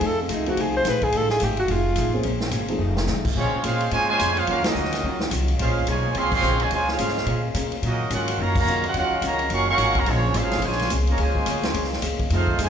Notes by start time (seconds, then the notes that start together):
Already playing: D#3 A3 F4 G#4
0.01 F2 F3 A3 D#4 G#4, kick, ride
0.06 A4
0.22 C4
0.28 C#2 F3 A3 D#4 G#4, kick, hi-hat pedal, ride
0.34 D#4
0.46 F3 A3 C4 D#4 F#4 G#4, ride
0.57 C2 F3 A3 D#4, kick, ride
0.61 G#4
0.77 C5
0.85 A#1 F3 A3 D#4 G#4, kick, snare, hi-hat pedal, ride
0.90 B4
1.02 G#4, kick, ride
1.12 A1 F3 A3 D#4 G#4, kick, ride
1.17 A4
1.29 G#4, snare
1.40 G#1 F3 A3 D#4 G#4, kick, hi-hat pedal, ride
1.44 G4
1.57 F#4, ride
1.68 F1 F3 A3 D#4 G#4, kick, ride
1.72 F4
1.96 A1 F3 A3 D#4 G#4, kick, hi-hat pedal, ride
2.13 F3 A#3 C4 C#4 G#4
2.23 A#1 A#3 C4 C#4 G#4, kick, ride
2.27 C5
2.41 snare
2.51 G#1 A#3 C#4 G#4 C5, kick, hi-hat pedal, ride
2.68 F3 A3 C4 D#4 G#4, ride
2.79 F1 D#3 F3 A3 D#4 F4
2.83 G#4
2.97 snare
3.07 C2 F3 A3 D#4 G#4, snare, hi-hat pedal
3.25 muted upright bass stroke, kick, crash
3.35 A#1 C#3 F3 G#3 A#3 C4 C#4 F4 G#4 C5 C#5, kick
3.53 muted upright bass stroke
3.62 A#2 G#3 A#3 C#4 F4 G#4 C5 F5, kick, hi-hat pedal, ride
3.80 ride
3.90 G#2 C#3 F3 G#3 A#3 C#4 F4 C5 C#5 G#5, kick, ride
3.94 G#4 C5
4.07 C#3 F3 G#3 F4 C5 C#5 G#5
4.19 F2 A#3 C#4 G#4 C5, kick, hi-hat pedal, ride
4.34 G#3 C#4 F4 G#4 C5 F5, ride
4.46 D#2 D#3 F#3 A#3 C#4 F4 F#4 A#4 F5, kick, ride
4.50 F4
4.63 F#3 A#3 C#4 D#4 F#4 A#4 D#5, snare, ride
4.75 D2 D#3 F#3 C#4 F4, hi-hat pedal
4.85 snare
4.92 snare, ride
5.03 C#2 D#3 F#3 C#4 F4, kick
5.20 snare
5.31 C2 D#3 F#3 C#4 F4, kick, hi-hat pedal, ride
5.48 ride
5.59 A#1 A#2 G#3 A#3 C#4 F4 G#4 C5 F5, kick, ride
5.87 B1 C#3 F3 G#3 A#3 C#4 F4 G#4 C5 C#5 G#5, kick, hi-hat pedal, ride
6.14 C2 F3 G#3 A#3 C4 C#4 G#4 C5 C#5 F5 C6, kick, ride
6.32 F3 G#3 C4 G#4 C#5 F5 C6, kick, crash
6.42 A#1 A#3 C#4 G#4 C5, hi-hat pedal
6.60 C#3 F3 G#3 F4 C5 C#5 G#5, ride
6.71 C#2 C#3 F3 G#3 A#3 C#4 F4 G#4 C5 C#5 G#5, kick, ride
6.88 G#3 C#4 F4 G#4 C5 F5, snare
6.98 G#2 A#3 C#4 G#4 C5, kick, hi-hat pedal, ride
7.08 snare
7.17 snare
7.26 A#2 A#3 C#4 G#4 C5, kick, ride
7.54 C3 A#3 C#4 G#4 C5, kick, hi-hat pedal, ride
7.71 muted upright bass stroke, ride
7.82 A#2 D#3 F#3 A#3 C#4 D#4 F4 F#4 A#4 D#5, kick, ride
8.10 G#2 D#3 F#3 A#3 C#4 F4 F#4 A#4 F#5, kick, hi-hat pedal, ride
8.28 ride
8.38 F#2 C#3 D#3 F#3 A#3 C#4 F4 F#4 C#5 F5 A#5, kick
8.55 C#3 F#3 A#3 F#4 C#5 F5 A#5, kick, crash
8.66 F2 D#3 F#3 C#4 F4, hi-hat pedal
8.84 A#3 C#4 F4 F#4 A#4 F#5, ride
8.94 D#2 D#3 F#3 A#3 C#4 F4 F#4, kick, ride
8.98 A#4 F#5
9.10 muted upright bass stroke
9.21 C#2 C#3 D#3 F#3 A#3 C#4 F4 C#5 F5, kick, hi-hat pedal, ride
9.25 F#4 A#5
9.39 ride
9.49 F#1 D#3 F#3 A#3 C#4 F4 A#4 F5 F#5 C#6, kick, ride
9.69 F#3 A#3 C#4 A#4 F5 F#5 C#6
9.78 G#1 D#3 F#3 C#4 F4, kick, hi-hat pedal, ride
9.95 C#3 F#3 A#3 F#4 C#5 F5 A#5, kick, ride
10.06 A#1 C#3 F3 G#3 A#3 C4 C#4 F4 G#4 C5 C#5, kick, ride
10.34 G#1 G#3 A#3 C#4 F4 G#4 C5 F5, kick, hi-hat pedal, ride
10.51 snare, ride
10.62 A#1 C#3 F3 G#3 A#3 C#4 F4 G#4 C5 C#5 G#5, kick, ride
10.72 snare
10.79 snare, ride
10.90 C2 A#3 C#4 G#4 C5, kick, hi-hat pedal, ride
11.07 C#3 F3 A#3 G#4 C#5 F5 A#5, ride
11.18 C#2 C#3 F3 G#3 A#3 C#4 F4 G#4 C5 C#5 G#5, kick, ride
11.35 kick
11.46 D2 A#3 C#4 G#4 C5, kick, hi-hat pedal, ride
11.63 snare, ride
11.74 C#2 A#3 C#4 G#4 C5, kick, ride
11.84 snare
11.93 snare
12.02 C#2 A#3 C#4 G#4 C5, kick, hi-hat pedal, ride
12.19 muted upright bass stroke, kick, ride
12.30 F2 D#3 F3 A3 C4 D#4 F4 G#4, kick, ride
12.34 A4 C5 F5
12.48 kick
12.58 F#2 C3 D#3 F3 G#3 A3 D#4 G#4, kick, hi-hat pedal, ride
12.62 D#4 A4 C5 G#5